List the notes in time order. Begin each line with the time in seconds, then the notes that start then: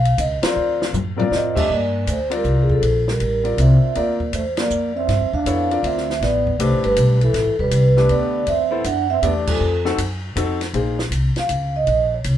Already playing: B1 F5
0.05 ride
0.18 C#2 D#5, hi-hat pedal, ride
0.42 C4 F4 A#4 C5 D5, muted upright bass stroke, snare, ride
0.56 D2
0.82 snare
0.93 F#2, floor tom, hi-hat pedal
1.16 C4 F4 A#4 D5, floor tom
1.27 F2 A#3 D5
1.32 C4 D#5, snare
1.55 A3 D4 G4 C5 E5, kick, crash
1.69 G2 A#3 D5
2.07 D2 A3, hi-hat pedal, ride
2.11 C5
2.30 G3 C4 F4 A#4 D5, ride
2.35 A#4
2.44 C2, hi-hat pedal
2.60 E3 G#4
2.69 F3 A4, kick
2.82 A#1, ride
3.08 G3 A#4, snare
3.20 A1, ride
3.44 C4 F4 A#4 D5, ride
3.58 C2 C4 E5, hi-hat pedal, ride
3.83 muted upright bass stroke
3.95 D2 A#3 C4 F4 A#4 D5, ride
4.20 kick
4.33 E2 A3 C5, hi-hat pedal, ride
4.57 A#3 D5, snare, ride
4.70 F2, hi-hat pedal
4.96 C4 E5
5.08 G2, snare, ride
5.21 F2
5.33 D2 D4 F5, kick
5.46 F2 B3 E4 A4 C#5, hi-hat pedal, ride
5.71 C4 F4 A#4 D5, ride
5.83 D2 C4 E5, ride
5.98 snare
6.10 snare
6.21 A1 B3 D5, snare, ride
6.47 kick
6.59 C2 A3 D4 G4 B4 C5, hi-hat pedal, ride
6.72 A1
6.84 G1 G3 B4, ride
6.96 B1, hi-hat pedal, ride
7.21 E3 A4, ride
7.33 A1, snare, ride
7.46 G1
7.59 E1 G3 B4, kick
7.71 C2, hi-hat pedal, ride
7.97 A3 D4 G4 B4, snare
8.09 D2 B3 D5, ride
8.47 E2 C4 E5, ride
8.71 B3 E4 A4 C5
8.84 F#2 D4 F#5, hi-hat pedal, ride
9.10 C4 E5
9.22 E2 A3 B3 D4 G4 D5, hi-hat pedal, ride
9.47 F3 A4, kick, crash
9.60 F2
9.85 C4 D#4 F#4 A4, snare
9.98 F#2, hi-hat pedal, ride
10.36 F2 C4 D#4 F#4 A4, hi-hat pedal, ride
10.61 snare, ride
10.74 A#1 A#3 D#4 G#4 C5, ride
10.99 snare
11.11 C2, hi-hat pedal, ride
11.36 F5, muted upright bass stroke, snare, ride
11.49 C#2, hi-hat pedal, ride
11.76 D#5
11.87 A#1, ride
11.92 D#5
12.14 C#5
12.24 C2, hi-hat pedal, ride